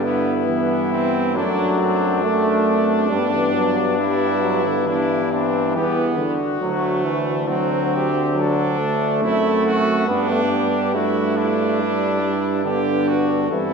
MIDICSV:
0, 0, Header, 1, 6, 480
1, 0, Start_track
1, 0, Key_signature, 1, "major"
1, 0, Tempo, 878477
1, 1701, Time_signature, 4, 2, 24, 8
1, 4573, Tempo, 858369
1, 7573, End_track
2, 0, Start_track
2, 0, Title_t, "Cornet"
2, 0, Program_c, 0, 56
2, 23, Note_on_c, 0, 64, 74
2, 740, Note_on_c, 0, 62, 76
2, 748, Note_off_c, 0, 64, 0
2, 1693, Note_off_c, 0, 62, 0
2, 1697, Note_on_c, 0, 62, 73
2, 2662, Note_on_c, 0, 64, 69
2, 2670, Note_off_c, 0, 62, 0
2, 2908, Note_on_c, 0, 62, 80
2, 2916, Note_off_c, 0, 64, 0
2, 3142, Note_on_c, 0, 67, 69
2, 3150, Note_off_c, 0, 62, 0
2, 3310, Note_off_c, 0, 67, 0
2, 3381, Note_on_c, 0, 66, 66
2, 3929, Note_off_c, 0, 66, 0
2, 4098, Note_on_c, 0, 66, 75
2, 4348, Note_on_c, 0, 67, 72
2, 4357, Note_off_c, 0, 66, 0
2, 4588, Note_on_c, 0, 69, 66
2, 4597, Note_off_c, 0, 67, 0
2, 5061, Note_off_c, 0, 69, 0
2, 5066, Note_on_c, 0, 69, 64
2, 5525, Note_off_c, 0, 69, 0
2, 5539, Note_on_c, 0, 67, 66
2, 6014, Note_on_c, 0, 66, 77
2, 6023, Note_off_c, 0, 67, 0
2, 6257, Note_on_c, 0, 64, 68
2, 6266, Note_off_c, 0, 66, 0
2, 6970, Note_on_c, 0, 62, 63
2, 6978, Note_off_c, 0, 64, 0
2, 7441, Note_off_c, 0, 62, 0
2, 7444, Note_on_c, 0, 69, 74
2, 7573, Note_off_c, 0, 69, 0
2, 7573, End_track
3, 0, Start_track
3, 0, Title_t, "Trumpet"
3, 0, Program_c, 1, 56
3, 22, Note_on_c, 1, 59, 67
3, 191, Note_off_c, 1, 59, 0
3, 261, Note_on_c, 1, 59, 66
3, 495, Note_off_c, 1, 59, 0
3, 503, Note_on_c, 1, 60, 75
3, 743, Note_on_c, 1, 62, 78
3, 752, Note_off_c, 1, 60, 0
3, 981, Note_off_c, 1, 62, 0
3, 984, Note_on_c, 1, 60, 69
3, 1223, Note_on_c, 1, 62, 82
3, 1231, Note_off_c, 1, 60, 0
3, 2183, Note_off_c, 1, 62, 0
3, 2185, Note_on_c, 1, 64, 76
3, 2653, Note_off_c, 1, 64, 0
3, 2664, Note_on_c, 1, 62, 75
3, 2898, Note_off_c, 1, 62, 0
3, 2908, Note_on_c, 1, 60, 65
3, 3139, Note_off_c, 1, 60, 0
3, 3144, Note_on_c, 1, 59, 76
3, 3459, Note_off_c, 1, 59, 0
3, 3617, Note_on_c, 1, 57, 82
3, 4089, Note_on_c, 1, 60, 72
3, 4098, Note_off_c, 1, 57, 0
3, 4570, Note_off_c, 1, 60, 0
3, 4574, Note_on_c, 1, 62, 74
3, 5045, Note_off_c, 1, 62, 0
3, 5055, Note_on_c, 1, 64, 80
3, 5287, Note_off_c, 1, 64, 0
3, 5295, Note_on_c, 1, 66, 82
3, 5525, Note_off_c, 1, 66, 0
3, 5534, Note_on_c, 1, 62, 87
3, 6001, Note_off_c, 1, 62, 0
3, 6014, Note_on_c, 1, 64, 72
3, 6248, Note_on_c, 1, 62, 80
3, 6257, Note_off_c, 1, 64, 0
3, 6961, Note_off_c, 1, 62, 0
3, 6964, Note_on_c, 1, 67, 72
3, 7207, Note_on_c, 1, 66, 74
3, 7216, Note_off_c, 1, 67, 0
3, 7449, Note_off_c, 1, 66, 0
3, 7452, Note_on_c, 1, 64, 87
3, 7573, Note_off_c, 1, 64, 0
3, 7573, End_track
4, 0, Start_track
4, 0, Title_t, "French horn"
4, 0, Program_c, 2, 60
4, 0, Note_on_c, 2, 59, 78
4, 746, Note_on_c, 2, 57, 71
4, 754, Note_off_c, 2, 59, 0
4, 1232, Note_on_c, 2, 62, 65
4, 1240, Note_off_c, 2, 57, 0
4, 1467, Note_off_c, 2, 62, 0
4, 1471, Note_on_c, 2, 60, 69
4, 1710, Note_on_c, 2, 59, 78
4, 1718, Note_off_c, 2, 60, 0
4, 2185, Note_off_c, 2, 59, 0
4, 2192, Note_on_c, 2, 59, 68
4, 2657, Note_off_c, 2, 59, 0
4, 2670, Note_on_c, 2, 59, 68
4, 3135, Note_off_c, 2, 59, 0
4, 3151, Note_on_c, 2, 59, 70
4, 3463, Note_off_c, 2, 59, 0
4, 3621, Note_on_c, 2, 62, 68
4, 5060, Note_on_c, 2, 60, 62
4, 5069, Note_off_c, 2, 62, 0
4, 5530, Note_off_c, 2, 60, 0
4, 5533, Note_on_c, 2, 59, 77
4, 6019, Note_on_c, 2, 62, 68
4, 6028, Note_off_c, 2, 59, 0
4, 6494, Note_off_c, 2, 62, 0
4, 6499, Note_on_c, 2, 62, 58
4, 6975, Note_on_c, 2, 59, 67
4, 6984, Note_off_c, 2, 62, 0
4, 7453, Note_off_c, 2, 59, 0
4, 7457, Note_on_c, 2, 60, 85
4, 7573, Note_off_c, 2, 60, 0
4, 7573, End_track
5, 0, Start_track
5, 0, Title_t, "Trombone"
5, 0, Program_c, 3, 57
5, 0, Note_on_c, 3, 50, 93
5, 232, Note_off_c, 3, 50, 0
5, 258, Note_on_c, 3, 52, 91
5, 729, Note_off_c, 3, 52, 0
5, 741, Note_on_c, 3, 54, 100
5, 1213, Note_off_c, 3, 54, 0
5, 1215, Note_on_c, 3, 57, 106
5, 1696, Note_on_c, 3, 55, 89
5, 1704, Note_off_c, 3, 57, 0
5, 1817, Note_off_c, 3, 55, 0
5, 1820, Note_on_c, 3, 52, 75
5, 1935, Note_on_c, 3, 54, 89
5, 1944, Note_off_c, 3, 52, 0
5, 2173, Note_off_c, 3, 54, 0
5, 2176, Note_on_c, 3, 55, 84
5, 2412, Note_on_c, 3, 54, 97
5, 2420, Note_off_c, 3, 55, 0
5, 2544, Note_on_c, 3, 50, 80
5, 2552, Note_off_c, 3, 54, 0
5, 2657, Note_on_c, 3, 52, 94
5, 2665, Note_off_c, 3, 50, 0
5, 3373, Note_on_c, 3, 50, 94
5, 3382, Note_off_c, 3, 52, 0
5, 3609, Note_off_c, 3, 50, 0
5, 3612, Note_on_c, 3, 54, 88
5, 3850, Note_on_c, 3, 52, 79
5, 3858, Note_off_c, 3, 54, 0
5, 4085, Note_off_c, 3, 52, 0
5, 4089, Note_on_c, 3, 54, 87
5, 4411, Note_off_c, 3, 54, 0
5, 4566, Note_on_c, 3, 54, 89
5, 4794, Note_off_c, 3, 54, 0
5, 4812, Note_on_c, 3, 57, 102
5, 5513, Note_off_c, 3, 57, 0
5, 5527, Note_on_c, 3, 59, 102
5, 5644, Note_off_c, 3, 59, 0
5, 5657, Note_on_c, 3, 57, 81
5, 5709, Note_off_c, 3, 57, 0
5, 5773, Note_on_c, 3, 55, 83
5, 6016, Note_on_c, 3, 57, 80
5, 6024, Note_off_c, 3, 55, 0
5, 6495, Note_on_c, 3, 55, 92
5, 6503, Note_off_c, 3, 57, 0
5, 6721, Note_off_c, 3, 55, 0
5, 6724, Note_on_c, 3, 55, 84
5, 6960, Note_off_c, 3, 55, 0
5, 6963, Note_on_c, 3, 50, 99
5, 7437, Note_off_c, 3, 50, 0
5, 7447, Note_on_c, 3, 52, 84
5, 7573, Note_off_c, 3, 52, 0
5, 7573, End_track
6, 0, Start_track
6, 0, Title_t, "Tuba"
6, 0, Program_c, 4, 58
6, 0, Note_on_c, 4, 43, 74
6, 742, Note_on_c, 4, 42, 73
6, 751, Note_off_c, 4, 43, 0
6, 1704, Note_off_c, 4, 42, 0
6, 1707, Note_on_c, 4, 43, 72
6, 3147, Note_on_c, 4, 40, 63
6, 3155, Note_off_c, 4, 43, 0
6, 3467, Note_off_c, 4, 40, 0
6, 3620, Note_on_c, 4, 38, 79
6, 5056, Note_on_c, 4, 42, 70
6, 5064, Note_off_c, 4, 38, 0
6, 5530, Note_on_c, 4, 43, 70
6, 5538, Note_off_c, 4, 42, 0
6, 7447, Note_off_c, 4, 43, 0
6, 7451, Note_on_c, 4, 43, 73
6, 7573, Note_off_c, 4, 43, 0
6, 7573, End_track
0, 0, End_of_file